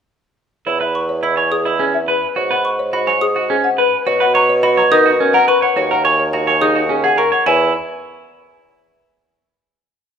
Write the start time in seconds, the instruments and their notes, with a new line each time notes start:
0.67 bassoon E2, clean electric guitar E4, marimba C#5
0.81 clean electric guitar B4, marimba E5
0.95 xylophone C#6
1.09 marimba C#5
1.23 clean electric guitar E4, marimba D#5, xylophone B5
1.37 clean electric guitar C#5, marimba G#5
1.52 marimba G#4, xylophone D#6
1.65 clean electric guitar E4, marimba D#5
1.79 clean electric guitar C#4, marimba G#4
1.94 marimba E5
2.08 clean electric guitar B4, marimba B4
2.36 bassoon G#2, clean electric guitar F#4, marimba C#5
2.51 clean electric guitar B4, marimba F#5
2.65 xylophone C#6
2.79 marimba C#5
2.93 clean electric guitar F#4, marimba D#5, xylophone B5
3.07 clean electric guitar C#5, marimba G#5
3.21 marimba G#4, xylophone D#6
3.36 clean electric guitar F#4, marimba D#5
3.50 clean electric guitar C#4, marimba G#4
3.64 marimba F#5
3.78 clean electric guitar B4, marimba B4
4.07 bassoon B2, clean electric guitar F#4, marimba C#5
4.20 clean electric guitar B4, marimba F#5
4.35 clean electric guitar C#5, marimba A#5, xylophone C#6
4.49 marimba C#5
4.63 clean electric guitar F#4, marimba D#5, xylophone B5
4.77 clean electric guitar C#5, marimba A#5
4.91 clean electric guitar D#4, marimba A#4, xylophone D#6
5.06 clean electric guitar F#4, marimba D#5
5.20 clean electric guitar C#4, marimba A#4
5.34 clean electric guitar A#4, marimba F#5
5.48 clean electric guitar B4, marimba B4, xylophone C#6
5.62 clean electric guitar C#5, marimba F#5
5.77 bassoon D#2, clean electric guitar F#4, marimba C#5
5.91 clean electric guitar A#4, marimba F#5
6.05 clean electric guitar C#5, marimba G#5, xylophone C#6
6.19 marimba C#5
6.33 clean electric guitar F#4, marimba D#5, xylophone A#5
6.47 clean electric guitar C#5, marimba G#5
6.61 clean electric guitar D#4, marimba G#4, xylophone D#6
6.76 clean electric guitar F#4, marimba D#5
6.89 clean electric guitar C#4, marimba G#4
7.04 clean electric guitar G#4, marimba F#5
7.18 clean electric guitar A#4, marimba A#4, xylophone C#6
7.32 clean electric guitar C#5, marimba F#5
7.46 bassoon E2, clean electric guitar E4, marimba C#5, xylophone G#5